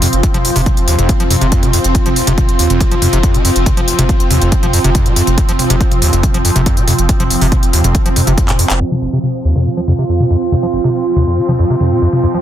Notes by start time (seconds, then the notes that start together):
Already playing: F3 C4 F4 F5 C6
0.02 F2, open hi-hat, mid tom
0.13 F1, closed hi-hat
0.23 F2, kick, closed hi-hat
0.34 F1 F3, closed hi-hat, mid tom
0.45 F1, open hi-hat
0.56 F1 C3, open hi-hat
0.66 kick, closed hi-hat, mid tom
0.77 F1, closed hi-hat
0.88 D#2, open hi-hat
0.99 F1 F2, closed hi-hat, mid tom
1.09 F3, kick, closed hi-hat
1.20 F1 F3, closed hi-hat
1.30 F2, open hi-hat, mid tom
1.41 F1 C3, closed hi-hat
1.52 F2, kick, closed hi-hat
1.63 F1 C3, closed hi-hat, mid tom
1.73 F2, open hi-hat
1.84 F1, closed hi-hat
1.95 F2, kick, closed hi-hat
2.06 F1 F3, closed hi-hat, mid tom
2.16 F1, open hi-hat
2.27 F1 C3, closed hi-hat
2.38 kick, closed hi-hat, mid tom
2.49 F1, closed hi-hat
2.59 D#2, open hi-hat
2.70 F1 F2, closed hi-hat, mid tom
2.81 F3, kick, closed hi-hat
2.91 F1 F3, closed hi-hat
3.02 F2, open hi-hat, mid tom
3.13 F1 C3, closed hi-hat
3.23 F2, kick, closed hi-hat
3.34 F1 C3, closed hi-hat, mid tom
3.45 F2, open hi-hat
3.56 F1, closed hi-hat
3.66 F2, kick, closed hi-hat, mid tom
3.77 F1 F3, closed hi-hat
3.88 F1, open hi-hat
3.99 F1 C3, closed hi-hat, mid tom
4.09 kick, closed hi-hat
4.20 F1, closed hi-hat
4.31 D#2, open hi-hat, mid tom
4.41 F1 F2, closed hi-hat
4.52 F3, kick, closed hi-hat
4.63 F1 F3, closed hi-hat, mid tom
4.73 F2, open hi-hat
4.84 F1 C3, closed hi-hat
4.95 F2, kick, closed hi-hat, mid tom
5.06 F1 C3, closed hi-hat
5.16 F2, open hi-hat
5.27 F1, closed hi-hat, mid tom
5.38 F2, kick, closed hi-hat
5.49 F1 F3, closed hi-hat
5.59 F1, open hi-hat, mid tom
5.70 F1 C3, closed hi-hat
5.81 kick, closed hi-hat
5.91 F1, closed hi-hat, mid tom
6.02 D#2, open hi-hat
6.13 F1 F2, closed hi-hat
6.23 F3, kick, closed hi-hat, mid tom
6.34 F1 F3, closed hi-hat
6.45 F2, open hi-hat
6.56 F1 C3, closed hi-hat, mid tom
6.66 F2, kick, closed hi-hat
6.77 F1 C3, closed hi-hat
6.88 F2, open hi-hat, mid tom
6.98 F1, closed hi-hat
7.09 F2, kick, closed hi-hat
7.20 F1 F3, closed hi-hat, mid tom
7.30 F1, open hi-hat
7.41 F1 C3, open hi-hat
7.52 kick, closed hi-hat, mid tom
7.63 F1, closed hi-hat
7.73 D#2, open hi-hat
7.84 F1 F2, closed hi-hat, mid tom
7.95 F3, kick, closed hi-hat
8.06 F1 F3, closed hi-hat
8.16 F2, open hi-hat, mid tom
8.27 F1 C3, closed hi-hat
8.38 F2, kick, closed hi-hat
8.48 F1 C3, clap, closed hi-hat, mid tom
8.59 F2, open hi-hat
8.70 F1, clap, closed hi-hat
8.80 F2 F3 C4
8.91 F3 F5, mid tom
9.02 F1
9.12 C3 F4
9.23 mid tom
9.40 C6
9.45 D#2
9.56 F2, mid tom
9.66 F3
9.77 F3
9.88 F2, mid tom
9.99 C3
10.09 F2
10.20 C3, mid tom
10.30 F2
10.52 F2, mid tom
10.63 F3
10.73 F1
10.84 C3, mid tom
11.16 D#2, mid tom
11.27 F2
11.38 F3
11.49 F3, mid tom
11.59 F2
11.70 C3
11.80 F2, mid tom
11.91 C3
12.02 F2
12.13 mid tom
12.23 F2
12.34 F3 A#5